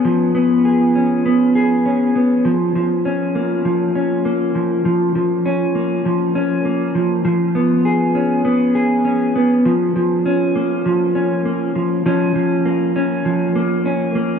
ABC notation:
X:1
M:4/4
L:1/8
Q:1/4=100
K:A#phr
V:1 name="Clean electric guitar"
[E,B,CG] B, G C B, G C B, | E, E, C A, E, C A, E, | E, E, C A, E, C A, E, | E, B, G C B, G C B, |
E, E, C A, E, C A, E, | [E,C] E, A, C E, A, C A, |]